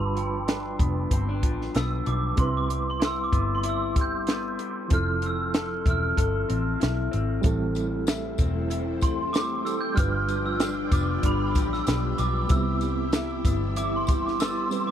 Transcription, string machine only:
7.43 E4 A4 C5 G5
9.96 F4 G4 D5
12.49 E4 E5

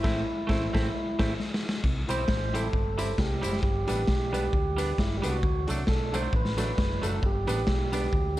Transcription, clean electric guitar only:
0.03 A3 C4 E4
0.47 A3 C4 E4
0.73 A3 C4 E4
1.19 A3 C4 E4
2.09 G3 C4 E4
2.54 G3 C4 E4
2.98 G3 C4 E4
3.42 G3 C4 E4
3.88 G3 B3 D4
4.33 G3 B3 D4
4.77 G3 B3 D4
5.22 G3 B3 D4
5.69 F#3 A3 D4
6.14 F#3 A3 D4
6.58 F#3 A3 D4
7.02 F#3 A3 D4
7.47 G3 B3 D4
7.92 G3 B3 D4

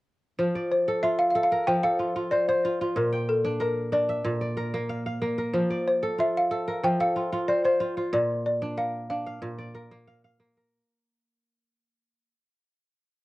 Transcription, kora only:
0.39 F3
0.55 D5
0.88 A4
1.03 F4
1.35 A4
1.52 A#4
1.68 F3
1.84 A4
1.99 F4
2.16 F4
2.32 C5
2.48 C5
2.65 F4
2.81 F4
2.96 A#2
3.12 G5
3.45 D4
3.60 A#4
3.92 D4
4.09 E5
4.24 A#2
4.41 D5
4.57 A#4
4.74 A#3
4.89 F5
5.06 F5
5.22 A#3
5.38 A#4
5.53 F3
5.70 D5
6.03 A4
6.18 F4
6.51 A4
6.68 A#4
6.83 F3
7.00 A4
7.16 F4
7.32 F4
7.48 C5
7.64 C5
7.80 F4
7.97 F4
8.13 A#2
8.62 D4
8.77 A#4
9.10 D4
9.26 F5
9.42 A#2
9.58 D5
9.75 A#4
9.91 A#3
10.07 F5
10.24 F5
10.40 A#3
10.57 A#4

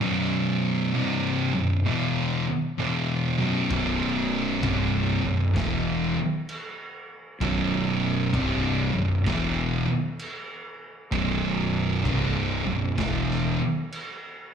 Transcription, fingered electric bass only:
3.71 B0
4.63 C1
5.24 B0
5.57 E1
7.41 B0
8.34 C1
8.95 B0
9.27 E1
11.13 B0
12.06 C1
12.66 B0
12.98 E1

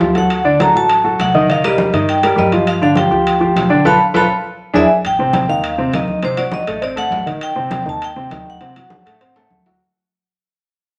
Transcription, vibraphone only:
0.18 F#5
0.62 A#5
0.77 A5
1.21 F#5
1.52 F5
1.65 D#5
2.09 G5
2.39 D#5
2.68 F5
2.83 F5
2.97 G5
3.87 F5 A5 B5
4.16 F5 A5 B5
4.76 D5 E5 G#5
5.07 G5
5.50 F5
5.95 D#5
6.25 C5
6.38 D5
6.54 D#5
6.84 D5
6.98 F#5
7.43 G5
7.89 A5
8.04 G5
8.50 F#5

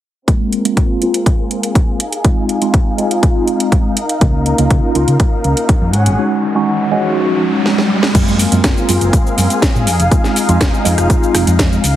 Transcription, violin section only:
0.28 C4 G#4 A#4 F5
2.00 D#4
3.97 A#4
5.93 C#4 G#4 F#5
8.15 C4 G#4 A#4 F5
9.87 D#4
11.84 D#4 A#4 F5

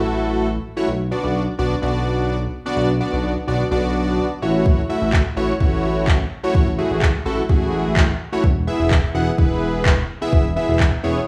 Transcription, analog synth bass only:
Already playing: A1
0.88 B1
1.24 B1
1.59 B1
1.82 B1
2.77 B1
3.13 B1
3.48 B1
3.71 B1
4.42 A1
5.02 A1
5.37 A1
5.60 A1
6.55 A1
6.91 A1
7.26 A1
7.49 A1
8.44 E1
8.80 E1
9.15 E1
9.38 E1
10.33 E1
10.69 E1
11.04 E1

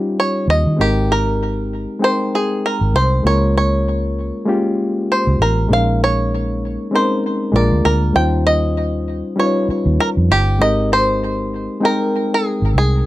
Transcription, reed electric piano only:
Already playing: G3 C#4 D#4 F4 G4 C5
0.77 G#3 C4 D#4 G4 A#4
2.00 G#3 C4 D#4 A#4 G5
3.23 G#3 A#3 C#4 F4 A#4
4.46 G#3 A#3 C#4 F4 G4
5.68 G#3 A#3 C#4 D#4
5.72 A#4
6.91 G#3 C4 C#4 D#4 A#4
7.52 G#3 A#3 D4 F4 A#4
8.13 G3 C#4 D#4 F4
8.17 C5
9.36 G3 C#4 D#4 F4 B4
9.47 C#5
10.59 G#3 C4 D#4 G4 A#4
11.80 G#3 C4 D#4 A#4 G5

